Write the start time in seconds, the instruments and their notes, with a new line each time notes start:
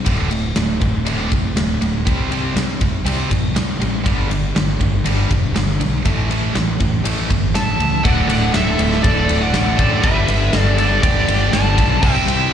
0.05 fingered electric bass D1, overdriven electric guitar D2 A2 D3, kick, ride
0.31 overdriven electric guitar D2 A2, ride
0.56 fingered electric bass D1, overdriven electric guitar D2 A2, snare, ride
0.81 fingered electric bass D1, overdriven electric guitar D2 A2, kick, ride
1.05 fingered electric bass D1, overdriven electric guitar D2 A2 D3, ride
1.31 fingered electric bass C2, overdriven electric guitar D2 A2, kick, ride
1.56 fingered electric bass D1, overdriven electric guitar D2 A2, snare, ride
1.81 fingered electric bass D1, overdriven electric guitar D2 A2, ride
2.06 fingered electric bass C2, overdriven electric guitar C3 G3 C4, kick, ride
2.31 overdriven electric guitar C3 G3 C4, ride
2.56 fingered electric bass C2, overdriven electric guitar C3 G3, snare, ride
2.81 fingered electric bass C2, overdriven electric guitar C3 G3, kick, ride
3.05 fingered electric bass C2, overdriven electric guitar C3 G3 C4, ride
3.31 fingered electric bass A1, overdriven electric guitar C3 G3, kick, ride
3.55 fingered electric bass C2, overdriven electric guitar C3 G3, snare, ride
3.80 fingered electric bass A1, overdriven electric guitar C3 G3, ride
4.05 fingered electric bass G1, overdriven electric guitar G2 D3 G3, kick, ride
4.31 overdriven electric guitar G2 D3, ride
4.56 fingered electric bass G1, overdriven electric guitar G2 D3, snare, ride
4.81 fingered electric bass G1, overdriven electric guitar G2 D3, kick, ride
5.06 fingered electric bass G1, overdriven electric guitar G2 D3 G3, ride
5.31 fingered electric bass E1, overdriven electric guitar G2 D3, kick, ride
5.55 fingered electric bass G1, overdriven electric guitar G2 D3, snare, ride
5.69 snare
5.80 fingered electric bass B1, overdriven electric guitar G2 D3, ride
6.05 fingered electric bass A1, overdriven electric guitar A2 E3 A3, kick, ride
6.30 overdriven electric guitar A2 E3 A3, ride
6.55 fingered electric bass A1, overdriven electric guitar A2 E3, snare, ride
6.80 fingered electric bass A1, overdriven electric guitar A2 E3, kick, ride
7.04 fingered electric bass A1, overdriven electric guitar A2 E3 A3, ride
7.30 fingered electric bass G1, overdriven electric guitar A2 E3, kick, ride
7.55 fingered electric bass A1, overdriven electric guitar A2 E3, lead electric guitar E5 A5, snare, ride
7.79 fingered electric bass C#2, overdriven electric guitar A2 E3, ride
8.03 fingered electric bass D1, distorted electric guitar D2 A2 D3 A3 F#4, overdriven electric guitar D2 A2, tonewheel organ D4 A4 E5, lead electric guitar D5 F#5, kick, ride
8.08 overdriven electric guitar D3
8.28 fingered electric bass D1, lead electric guitar D5 F#5, ride
8.54 fingered electric bass D1, lead electric guitar A4 E5, snare, ride
8.77 fingered electric bass D1, distorted electric guitar D2 A2 D3 A3 F#4, ride
8.92 snare
9.03 fingered electric bass D1, lead electric guitar A4 D5, kick, ride
9.29 fingered electric bass D1, ride
9.42 lead electric guitar D5 F#5
9.52 fingered electric bass A1, distorted electric guitar D2 A2 D3 A3 F#4, snare, ride
9.77 overdriven electric guitar A2 D3, lead electric guitar A4 D5, kick, ride
9.81 overdriven electric guitar D2
10.01 fingered electric bass G1, distorted electric guitar G2 D3 G3 B3 D4 G4, overdriven electric guitar G2 D3, tonewheel organ G3, lead electric guitar B4 E5, kick, ride
10.06 overdriven electric guitar G3
10.28 fingered electric bass G1, ride
10.53 fingered electric bass G1, lead electric guitar A4, snare, ride
10.60 lead electric guitar D5
10.77 distorted electric guitar G2 D3 G3 B3 D4 G4, lead electric guitar A4 D5, snare, ride
11.03 fingered electric bass G1, lead electric guitar G4 D5, kick, ride
11.27 fingered electric bass G1, ride
11.52 fingered electric bass G1, distorted electric guitar G2 D3 G3 B3 D4 G4, lead electric guitar D5 A5, snare, ride
11.75 fingered electric bass B1, overdriven electric guitar D3 G3, kick, ride
11.79 overdriven electric guitar G2
12.01 fingered electric bass C2, overdriven electric guitar C3 G3 C4, distorted electric guitar C3 G3 C4 E4 G4 C5, tonewheel organ C4 G4 D5, lead electric guitar E5 G5, kick, crash
12.27 fingered electric bass C2, lead electric guitar E5 G5, ride